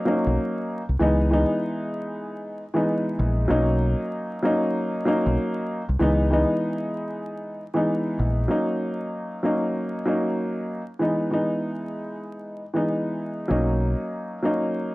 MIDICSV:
0, 0, Header, 1, 3, 480
1, 0, Start_track
1, 0, Key_signature, 5, "major"
1, 0, Tempo, 625000
1, 770, Time_signature, 4, 2, 24, 8
1, 11479, End_track
2, 0, Start_track
2, 0, Title_t, "Upright piano"
2, 0, Program_c, 0, 0
2, 39, Note_on_c, 0, 54, 96
2, 46, Note_on_c, 0, 58, 96
2, 53, Note_on_c, 0, 61, 89
2, 60, Note_on_c, 0, 63, 104
2, 615, Note_off_c, 0, 54, 0
2, 619, Note_off_c, 0, 58, 0
2, 622, Note_off_c, 0, 61, 0
2, 626, Note_off_c, 0, 63, 0
2, 761, Note_on_c, 0, 52, 102
2, 768, Note_on_c, 0, 56, 89
2, 776, Note_on_c, 0, 59, 93
2, 783, Note_on_c, 0, 63, 105
2, 990, Note_off_c, 0, 52, 0
2, 995, Note_off_c, 0, 56, 0
2, 999, Note_off_c, 0, 59, 0
2, 1002, Note_off_c, 0, 63, 0
2, 1002, Note_on_c, 0, 52, 93
2, 1009, Note_on_c, 0, 56, 86
2, 1016, Note_on_c, 0, 59, 87
2, 1023, Note_on_c, 0, 63, 108
2, 2008, Note_off_c, 0, 52, 0
2, 2012, Note_off_c, 0, 56, 0
2, 2015, Note_off_c, 0, 59, 0
2, 2019, Note_off_c, 0, 63, 0
2, 2102, Note_on_c, 0, 52, 94
2, 2109, Note_on_c, 0, 56, 88
2, 2117, Note_on_c, 0, 59, 86
2, 2123, Note_on_c, 0, 63, 98
2, 2645, Note_off_c, 0, 52, 0
2, 2649, Note_off_c, 0, 56, 0
2, 2652, Note_off_c, 0, 59, 0
2, 2656, Note_off_c, 0, 63, 0
2, 2671, Note_on_c, 0, 54, 98
2, 2678, Note_on_c, 0, 58, 82
2, 2686, Note_on_c, 0, 61, 86
2, 2693, Note_on_c, 0, 63, 110
2, 3358, Note_off_c, 0, 54, 0
2, 3362, Note_off_c, 0, 58, 0
2, 3365, Note_off_c, 0, 61, 0
2, 3369, Note_off_c, 0, 63, 0
2, 3399, Note_on_c, 0, 54, 97
2, 3406, Note_on_c, 0, 58, 91
2, 3413, Note_on_c, 0, 61, 91
2, 3421, Note_on_c, 0, 63, 111
2, 3856, Note_off_c, 0, 54, 0
2, 3859, Note_off_c, 0, 58, 0
2, 3863, Note_off_c, 0, 61, 0
2, 3867, Note_off_c, 0, 63, 0
2, 3881, Note_on_c, 0, 54, 97
2, 3889, Note_on_c, 0, 58, 96
2, 3896, Note_on_c, 0, 61, 90
2, 3903, Note_on_c, 0, 63, 105
2, 4456, Note_off_c, 0, 54, 0
2, 4460, Note_off_c, 0, 58, 0
2, 4463, Note_off_c, 0, 61, 0
2, 4467, Note_off_c, 0, 63, 0
2, 4603, Note_on_c, 0, 52, 103
2, 4611, Note_on_c, 0, 56, 93
2, 4617, Note_on_c, 0, 59, 97
2, 4625, Note_on_c, 0, 63, 107
2, 4831, Note_off_c, 0, 52, 0
2, 4836, Note_off_c, 0, 56, 0
2, 4839, Note_off_c, 0, 59, 0
2, 4842, Note_on_c, 0, 52, 92
2, 4843, Note_off_c, 0, 63, 0
2, 4849, Note_on_c, 0, 56, 86
2, 4857, Note_on_c, 0, 59, 88
2, 4864, Note_on_c, 0, 63, 109
2, 5848, Note_off_c, 0, 52, 0
2, 5852, Note_off_c, 0, 56, 0
2, 5856, Note_off_c, 0, 59, 0
2, 5859, Note_off_c, 0, 63, 0
2, 5944, Note_on_c, 0, 52, 96
2, 5951, Note_on_c, 0, 56, 84
2, 5958, Note_on_c, 0, 59, 89
2, 5966, Note_on_c, 0, 63, 100
2, 6486, Note_off_c, 0, 52, 0
2, 6490, Note_off_c, 0, 56, 0
2, 6493, Note_off_c, 0, 59, 0
2, 6497, Note_off_c, 0, 63, 0
2, 6514, Note_on_c, 0, 54, 91
2, 6521, Note_on_c, 0, 58, 80
2, 6528, Note_on_c, 0, 61, 82
2, 6536, Note_on_c, 0, 63, 103
2, 7199, Note_off_c, 0, 54, 0
2, 7203, Note_off_c, 0, 58, 0
2, 7206, Note_off_c, 0, 61, 0
2, 7210, Note_off_c, 0, 63, 0
2, 7239, Note_on_c, 0, 54, 90
2, 7247, Note_on_c, 0, 58, 86
2, 7254, Note_on_c, 0, 61, 83
2, 7261, Note_on_c, 0, 63, 101
2, 7696, Note_off_c, 0, 54, 0
2, 7700, Note_off_c, 0, 58, 0
2, 7704, Note_off_c, 0, 61, 0
2, 7707, Note_off_c, 0, 63, 0
2, 7720, Note_on_c, 0, 54, 94
2, 7728, Note_on_c, 0, 58, 88
2, 7735, Note_on_c, 0, 61, 83
2, 7742, Note_on_c, 0, 63, 97
2, 8296, Note_off_c, 0, 54, 0
2, 8299, Note_off_c, 0, 58, 0
2, 8303, Note_off_c, 0, 61, 0
2, 8307, Note_off_c, 0, 63, 0
2, 8442, Note_on_c, 0, 52, 95
2, 8450, Note_on_c, 0, 56, 84
2, 8457, Note_on_c, 0, 59, 87
2, 8464, Note_on_c, 0, 63, 99
2, 8672, Note_off_c, 0, 52, 0
2, 8676, Note_off_c, 0, 56, 0
2, 8680, Note_off_c, 0, 59, 0
2, 8683, Note_off_c, 0, 63, 0
2, 8684, Note_on_c, 0, 52, 89
2, 8691, Note_on_c, 0, 56, 80
2, 8698, Note_on_c, 0, 59, 79
2, 8705, Note_on_c, 0, 63, 104
2, 9689, Note_off_c, 0, 52, 0
2, 9693, Note_off_c, 0, 56, 0
2, 9697, Note_off_c, 0, 59, 0
2, 9700, Note_off_c, 0, 63, 0
2, 9782, Note_on_c, 0, 52, 92
2, 9789, Note_on_c, 0, 56, 81
2, 9796, Note_on_c, 0, 59, 85
2, 9803, Note_on_c, 0, 63, 98
2, 10325, Note_off_c, 0, 52, 0
2, 10329, Note_off_c, 0, 56, 0
2, 10332, Note_off_c, 0, 59, 0
2, 10336, Note_off_c, 0, 63, 0
2, 10351, Note_on_c, 0, 54, 93
2, 10359, Note_on_c, 0, 58, 80
2, 10366, Note_on_c, 0, 61, 82
2, 10373, Note_on_c, 0, 63, 102
2, 11038, Note_off_c, 0, 54, 0
2, 11042, Note_off_c, 0, 58, 0
2, 11045, Note_off_c, 0, 61, 0
2, 11049, Note_off_c, 0, 63, 0
2, 11078, Note_on_c, 0, 54, 91
2, 11086, Note_on_c, 0, 58, 90
2, 11093, Note_on_c, 0, 61, 85
2, 11100, Note_on_c, 0, 63, 102
2, 11479, Note_off_c, 0, 54, 0
2, 11479, Note_off_c, 0, 58, 0
2, 11479, Note_off_c, 0, 61, 0
2, 11479, Note_off_c, 0, 63, 0
2, 11479, End_track
3, 0, Start_track
3, 0, Title_t, "Fingered electric bass"
3, 0, Program_c, 1, 33
3, 203, Note_on_c, 1, 35, 88
3, 278, Note_off_c, 1, 35, 0
3, 682, Note_on_c, 1, 36, 85
3, 757, Note_off_c, 1, 36, 0
3, 771, Note_on_c, 1, 37, 114
3, 1102, Note_off_c, 1, 37, 0
3, 2452, Note_on_c, 1, 34, 99
3, 2655, Note_off_c, 1, 34, 0
3, 2691, Note_on_c, 1, 35, 110
3, 3022, Note_off_c, 1, 35, 0
3, 4043, Note_on_c, 1, 35, 93
3, 4118, Note_off_c, 1, 35, 0
3, 4522, Note_on_c, 1, 36, 89
3, 4597, Note_off_c, 1, 36, 0
3, 4612, Note_on_c, 1, 37, 116
3, 4943, Note_off_c, 1, 37, 0
3, 6293, Note_on_c, 1, 34, 94
3, 6495, Note_off_c, 1, 34, 0
3, 10371, Note_on_c, 1, 35, 100
3, 10703, Note_off_c, 1, 35, 0
3, 11479, End_track
0, 0, End_of_file